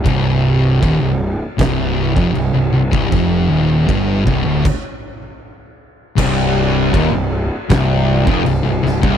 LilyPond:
<<
  \new Staff \with { instrumentName = "Distorted electric guitar" } { \clef bass \time 4/4 \key c \minor \tempo 4 = 79 c,4 ees,16 c,8 r16 c,8. f,16 c,16 c,16 c,16 c,16 | f,8 ees,8 g,8 c,16 d,16 r2 | c,4 ees,16 c,8 r16 c,8. f,16 c,16 c,16 c,16 c,16 | }
  \new Staff \with { instrumentName = "Distorted electric guitar" } { \clef bass \time 4/4 \key c \minor c,4 ees,16 c,8 r16 c,8. f,16 c,16 c,16 c,16 c,16 | f,8 ees,8 g,8 c,16 d,16 r2 | r1 | }
  \new Staff \with { instrumentName = "Distorted electric guitar" } { \clef bass \time 4/4 \key c \minor r1 | r1 | c,4 ees,16 c,8 r16 c,8. f,16 c,16 c,16 c,16 c,16 | }
  \new Staff \with { instrumentName = "Picked electric bass" } { \clef bass \time 4/4 \key c \minor c,,4 ees,,16 c,,8 r16 c,,8. f,,16 c,,16 c,,16 c,,16 c,,16 | f,,8 ees,,8 g,,8 c,,16 d,,16 r2 | c,,4 ees,,16 c,,8 r16 c,,8. f,,16 c,,16 c,,16 c,,16 c,,16 | }
  \new DrumStaff \with { instrumentName = "Drums" } \drummode { \time 4/4 <cymc bd>4 <cymc bd>4 <cymc bd sn>8. bd16 cymc8. bd16 | <cymc bd>4 <cymc bd>8 bd8 <cymc bd>4 r4 | <cymc bd>4 <cymc bd>4 <cymc bd sn>8. bd16 cymc8 sn16 bd16 | }
>>